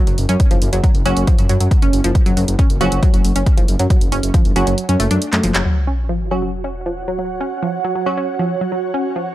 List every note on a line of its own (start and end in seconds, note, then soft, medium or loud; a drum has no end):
0.07 0.14 F#1 medium
0.07 0.17 F#3 medium
0.07 closed hi-hat medium
0.18 0.25 F#1 loud
0.18 open hi-hat loud
0.29 0.36 F#2 medium
0.29 0.39 C#4 loud
0.29 closed hi-hat medium
0.40 kick loud
0.40 closed hi-hat medium
0.51 0.58 F#1 medium
0.51 0.55 F3 loud
0.51 closed hi-hat medium
0.62 0.69 F#1 loud
0.62 open hi-hat loud
0.73 0.80 F#1 loud
0.73 0.79 F#3 loud
0.73 closed hi-hat medium
0.84 0.93 F#3 medium
0.84 kick loud
0.84 closed hi-hat medium
0.95 1.02 F#1 medium
0.95 open hi-hat medium
1.06 1.13 F#1 loud
1.06 1.25 F#3 medium
1.06 1.25 C#4 medium
1.06 1.15 C#4 loud
1.06 1.25 F#4 medium
1.06 open hi-hat loud
1.17 1.24 F#1 medium
1.17 closed hi-hat medium
1.27 1.31 F3 loud
1.27 kick loud
1.27 closed hi-hat medium
1.38 1.46 F#2 medium
1.38 closed hi-hat medium
1.49 1.57 F#2 loud
1.49 1.56 F#3 loud
1.49 open hi-hat loud
1.60 1.68 F#2 medium
1.60 1.70 F#3 medium
1.60 closed hi-hat medium
1.71 kick loud
1.71 closed hi-hat medium
1.82 1.90 F#1 medium
1.82 1.92 C#4 loud
1.82 closed hi-hat medium
1.93 2.01 F#1 loud
1.93 open hi-hat loud
2.04 2.12 F#1 medium
2.04 2.08 F3 loud
2.04 closed hi-hat medium
2.15 kick loud
2.15 closed hi-hat medium
2.26 2.33 F#1 medium
2.26 2.33 F#3 loud
2.26 closed hi-hat medium
2.37 2.44 F#1 loud
2.37 2.47 F#3 medium
2.37 open hi-hat loud
2.48 2.55 F#1 medium
2.48 closed hi-hat medium
2.59 2.69 C#4 loud
2.59 kick loud
2.59 closed hi-hat medium
2.70 2.77 F#1 medium
2.70 closed hi-hat medium
2.81 2.88 F#1 loud
2.81 2.85 F3 loud
2.81 3.00 F#3 medium
2.81 3.00 C#4 medium
2.81 3.00 F#4 loud
2.81 open hi-hat loud
2.92 2.99 F#1 medium
2.92 closed hi-hat medium
3.03 3.09 F#3 loud
3.03 kick loud
3.03 closed hi-hat medium
3.14 3.21 F#1 medium
3.14 3.23 F#3 medium
3.14 closed hi-hat medium
3.25 3.32 F#1 loud
3.25 open hi-hat loud
3.36 3.43 F#1 medium
3.36 3.45 C#4 loud
3.36 closed hi-hat medium
3.46 kick loud
3.46 closed hi-hat medium
3.57 3.65 F#1 medium
3.57 3.61 F3 loud
3.57 closed hi-hat medium
3.68 3.76 F#1 loud
3.68 open hi-hat loud
3.79 3.87 F#2 medium
3.79 3.86 F#3 loud
3.79 closed hi-hat medium
3.90 4.00 F#3 medium
3.90 kick loud
3.90 closed hi-hat medium
4.01 4.09 F#1 medium
4.01 closed hi-hat medium
4.12 4.20 F#1 loud
4.12 4.22 C#4 loud
4.12 open hi-hat loud
4.23 4.31 F#1 loud
4.23 closed hi-hat medium
4.34 4.38 F3 loud
4.34 kick loud
4.34 closed hi-hat medium
4.45 4.52 F#1 medium
4.45 open hi-hat medium
4.56 4.63 F#1 loud
4.56 4.75 F#3 medium
4.56 4.62 F#3 loud
4.56 4.75 C#4 medium
4.56 4.75 F#4 loud
4.56 open hi-hat loud
4.67 4.74 F#1 medium
4.67 4.77 F#3 medium
4.67 closed hi-hat medium
4.78 closed hi-hat medium
4.89 4.96 F#2 medium
4.89 4.98 C#4 loud
4.89 closed hi-hat medium
5.00 5.07 F#1 loud
5.00 5.06 A3 loud
5.00 open hi-hat loud
5.11 5.18 F#2 medium
5.11 5.15 D4 loud
5.11 closed hi-hat medium
5.22 closed hi-hat medium
5.33 5.40 F#2 medium
5.33 5.42 A3 medium
5.33 clap medium
5.33 closed hi-hat medium
5.43 5.51 F#1 loud
5.43 5.53 F3 loud
5.43 open hi-hat loud
5.55 5.62 F#1 medium
5.55 5.61 F#3 loud
5.55 clap loud
5.55 closed hi-hat medium
5.65 5.75 F#3 medium
5.65 9.35 F#4 medium
5.65 sub drop medium
5.85 5.97 C#4 loud
5.85 9.35 C#5 medium
5.97 9.35 F#5 medium
6.09 6.13 F3 loud
6.31 6.38 F#3 loud
6.31 6.51 F#3 medium
6.31 6.51 C#4 medium
6.31 6.51 F#4 medium
6.42 6.52 F#3 medium
6.64 6.74 C#4 loud
6.86 6.90 F3 medium
7.08 7.14 F#3 loud
7.19 7.29 F#3 medium
7.41 7.50 C#4 loud
7.62 7.66 F3 loud
7.84 7.91 F#3 loud
7.96 8.05 F#3 medium
8.06 8.26 F#3 medium
8.06 8.26 C#4 medium
8.06 8.26 F#4 medium
8.17 8.27 C#4 loud
8.39 8.43 F3 medium
8.61 8.68 F#3 loud
8.72 8.82 F#3 medium
8.94 9.04 C#4 loud
9.16 9.20 F3 loud